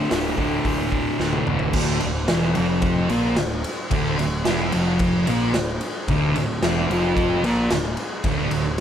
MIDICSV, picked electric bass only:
0, 0, Header, 1, 2, 480
1, 0, Start_track
1, 0, Key_signature, -1, "minor"
1, 0, Tempo, 542495
1, 1537, Time_signature, 4, 2, 24, 8
1, 7788, End_track
2, 0, Start_track
2, 0, Title_t, "Picked electric bass"
2, 0, Program_c, 0, 34
2, 107, Note_on_c, 0, 26, 83
2, 281, Note_off_c, 0, 26, 0
2, 331, Note_on_c, 0, 26, 80
2, 511, Note_off_c, 0, 26, 0
2, 582, Note_on_c, 0, 26, 85
2, 937, Note_off_c, 0, 26, 0
2, 1059, Note_on_c, 0, 26, 86
2, 1236, Note_off_c, 0, 26, 0
2, 1315, Note_on_c, 0, 26, 92
2, 1486, Note_off_c, 0, 26, 0
2, 1537, Note_on_c, 0, 26, 92
2, 1760, Note_off_c, 0, 26, 0
2, 1812, Note_on_c, 0, 26, 84
2, 2019, Note_off_c, 0, 26, 0
2, 2043, Note_on_c, 0, 28, 89
2, 2254, Note_off_c, 0, 28, 0
2, 2282, Note_on_c, 0, 29, 90
2, 2716, Note_off_c, 0, 29, 0
2, 2744, Note_on_c, 0, 34, 84
2, 2963, Note_off_c, 0, 34, 0
2, 2989, Note_on_c, 0, 26, 84
2, 3206, Note_off_c, 0, 26, 0
2, 3464, Note_on_c, 0, 26, 93
2, 3683, Note_off_c, 0, 26, 0
2, 3702, Note_on_c, 0, 26, 81
2, 3922, Note_off_c, 0, 26, 0
2, 3957, Note_on_c, 0, 28, 101
2, 4170, Note_off_c, 0, 28, 0
2, 4198, Note_on_c, 0, 29, 82
2, 4633, Note_off_c, 0, 29, 0
2, 4677, Note_on_c, 0, 34, 92
2, 4889, Note_off_c, 0, 34, 0
2, 4903, Note_on_c, 0, 26, 82
2, 5121, Note_off_c, 0, 26, 0
2, 5379, Note_on_c, 0, 26, 92
2, 5599, Note_off_c, 0, 26, 0
2, 5624, Note_on_c, 0, 26, 80
2, 5842, Note_off_c, 0, 26, 0
2, 5865, Note_on_c, 0, 28, 99
2, 6082, Note_off_c, 0, 28, 0
2, 6094, Note_on_c, 0, 29, 86
2, 6539, Note_off_c, 0, 29, 0
2, 6568, Note_on_c, 0, 34, 79
2, 6793, Note_off_c, 0, 34, 0
2, 6816, Note_on_c, 0, 26, 85
2, 7037, Note_off_c, 0, 26, 0
2, 7293, Note_on_c, 0, 26, 96
2, 7516, Note_off_c, 0, 26, 0
2, 7522, Note_on_c, 0, 26, 77
2, 7750, Note_off_c, 0, 26, 0
2, 7788, End_track
0, 0, End_of_file